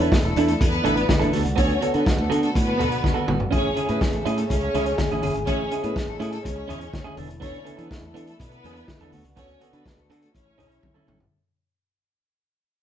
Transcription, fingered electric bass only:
0.24 E1
0.36 E2
0.61 E2
0.85 A1
1.21 A1
1.33 D2
1.45 C#2
1.58 D2
1.95 D3
2.18 D2
2.31 D3
2.56 A2
2.79 B2
3.28 G#1
3.53 A1
3.89 A2
4.13 A1
4.26 A2
4.50 C#2
4.74 C#2
5.11 A1
5.23 F#1
5.35 G#1
5.47 A1
5.84 A2
6.08 A1
6.20 A2
6.45 C#2
6.69 E2
7.17 E1
7.78 E3
8.03 E2
8.14 E3
8.40 B2
8.64 E2
9.00 E2
9.12 D2
9.24 C#2
9.37 D2
9.73 D3
9.97 D2
10.10 D3
10.35 A1
10.59 B1
11.08 G#1

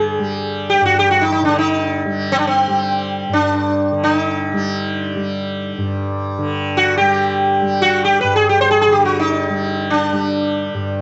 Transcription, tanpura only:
Already playing: G2 D3 G3
0.19 G3
0.81 G2
1.42 D3
2.05 G3
2.68 G3
3.29 G2
3.92 D3
4.53 G3
5.16 G3
5.78 G2
6.39 D3
7.00 G3
7.61 G3
8.23 G2
8.87 D3
9.49 G3
10.12 G3
10.74 G2

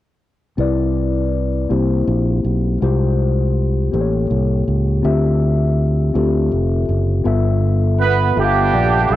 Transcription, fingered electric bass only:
0.58 C2
1.70 C2
2.07 A#1
2.45 B1
2.82 C2
3.93 A1
4.31 C2
4.68 C#2
5.04 D2
6.15 D2
6.52 F1
6.89 F#1
7.25 G1
8.37 G1
8.73 A#1
9.10 B1

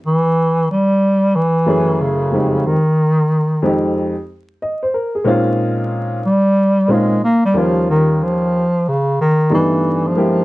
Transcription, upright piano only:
1.66 F#2 A3 C#4 E4 G#4
2.31 F2 G#3 C4 D#4 G4
3.62 F2 G#3 C4 D#4 G4
4.62 D#5
4.83 C5
4.94 A#4
5.15 G#4
5.25 A#2 G#3 C4 C#4 D#4 F4
6.88 A#2 G#3 C4 C#4 D#4 F4
7.54 D#2 G3 A#3 C#4 F4
9.50 G2 A3 B3 D4 D#4 E4
10.16 G#3 A#3 E4 G4

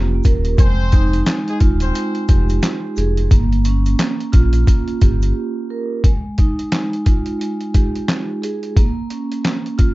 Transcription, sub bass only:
Already playing: F1
0.25 D#1
0.59 F1
1.61 D#1
2.29 F1
2.97 F1
3.31 G1
4.34 A#1
5.02 G1

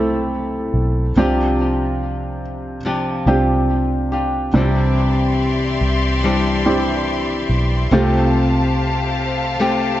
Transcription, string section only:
4.54 G4 D5 E5 C6
7.92 G4 C5 F5 A5

